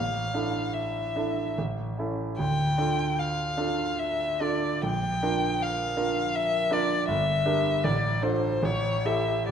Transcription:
Already playing: grand piano A1, violin F5
0.34 grand piano D4 E4 A4
0.74 violin E5
1.16 grand piano D4 E4 A4
1.58 grand piano A1
1.98 grand piano C#4 E4 A4
2.39 grand piano D2, violin G5
2.78 grand piano D4 F4 A4
3.19 violin F5
3.57 grand piano D4 F4 A4
3.99 violin E5
4.40 grand piano D4 F4 A4, violin D5
4.83 grand piano A#1, violin G5
5.23 grand piano D4 F4 A#4
5.62 violin F5
5.97 grand piano D4 F4 A#4
6.35 violin E5
6.71 grand piano D4 F4 A#4, violin D5
7.08 grand piano G1, violin E5
7.46 grand piano D4 G4 A#4
7.84 grand piano A1, violin D5
8.22 grand piano D4 F4 A4, violin C5
8.63 grand piano A1, violin C#5
9.05 grand piano E4 G4 A4, violin E5

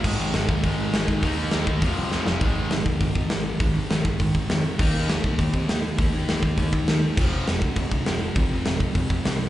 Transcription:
0.04 picked electric bass G#1, distorted electric guitar G#2 D#3 G#3, kick, crash
0.19 picked electric bass G#1
0.34 picked electric bass G#1, snare, open hi-hat
0.48 picked electric bass D#2, distorted electric guitar G#2 D#3 G#3, kick
0.63 picked electric bass G#1, distorted electric guitar G#2 D#3 G#3, kick, open hi-hat
0.78 picked electric bass G#1
0.93 picked electric bass G#1, distorted electric guitar G#2 D#3 G#3, snare, open hi-hat
1.08 picked electric bass G#1, kick
1.23 picked electric bass D#2, distorted electric guitar D#3 A#3 D#4, kick, open hi-hat
1.37 picked electric bass D#2
1.51 picked electric bass D#2, snare, open hi-hat
1.67 picked electric bass D#2, distorted electric guitar D#3 A#3 D#4, kick
1.81 picked electric bass F1, distorted electric guitar F2 C3 F3, kick, open hi-hat
1.97 picked electric bass C2
2.11 picked electric bass F2, snare
2.25 picked electric bass F1, distorted electric guitar F2 C3 F3, snare
2.41 picked electric bass G#1, distorted electric guitar G#2 D#3 G#3, kick, open hi-hat
2.56 picked electric bass G#1
2.70 picked electric bass G#1, distorted electric guitar G#2 D#3, snare, open hi-hat
2.86 picked electric bass F1, kick
3.00 picked electric bass G#1, distorted electric guitar G#2 D#3, kick, open hi-hat
3.15 picked electric bass F2, kick
3.29 picked electric bass G#1, distorted electric guitar G#2 D#3, snare, open hi-hat
3.60 picked electric bass G#1, distorted electric guitar G#2 D#3 G#3, kick, open hi-hat
3.73 picked electric bass G#1
3.89 picked electric bass G#1, distorted electric guitar G#2 D#3, snare, open hi-hat
4.05 picked electric bass G#1, kick
4.20 picked electric bass G#1, distorted electric guitar G#2 D#3, kick, open hi-hat
4.34 picked electric bass G#1, kick
4.50 picked electric bass F2, distorted electric guitar G#2 D#3, snare, open hi-hat
4.79 picked electric bass D#2, distorted electric guitar D#3 A#3 D#4, kick, crash
4.93 picked electric bass D#2
5.09 picked electric bass D#2, distorted electric guitar D#3 A#3, snare, open hi-hat
5.24 picked electric bass C2, kick
5.38 picked electric bass D#2, distorted electric guitar D#3 A#3, kick, open hi-hat
5.53 picked electric bass C3, kick
5.68 picked electric bass D#2, distorted electric guitar D#3 A#3, snare, open hi-hat
5.98 picked electric bass D#2, distorted electric guitar D#3 A#3 D#4, kick, open hi-hat
6.13 picked electric bass D#2
6.27 picked electric bass D#2, distorted electric guitar D#3 A#3, snare, open hi-hat
6.42 picked electric bass D#2, kick
6.58 picked electric bass D#2, distorted electric guitar D#3 A#3, kick, open hi-hat
6.73 picked electric bass D#2, kick
6.88 picked electric bass D#2, distorted electric guitar D#3 A#3, snare, open hi-hat
7.17 picked electric bass F1, distorted electric guitar F2 C3 F3, kick, crash
7.32 picked electric bass F1
7.47 picked electric bass F1, distorted electric guitar F2 C3, snare, open hi-hat
7.62 picked electric bass D2, kick
7.76 picked electric bass F1, distorted electric guitar F2 C3, kick, open hi-hat
7.91 picked electric bass D2, kick
8.06 picked electric bass F1, distorted electric guitar F2 C3, snare, open hi-hat
8.36 picked electric bass F1, distorted electric guitar F2 C3 F3, kick, open hi-hat
8.51 picked electric bass F1
8.65 picked electric bass F1, distorted electric guitar F2 C3, snare, open hi-hat
8.80 picked electric bass F1, kick
8.95 picked electric bass F1, distorted electric guitar F2 C3, kick, open hi-hat
9.10 picked electric bass F1, kick
9.25 picked electric bass C2, distorted electric guitar F2 C3, snare, open hi-hat

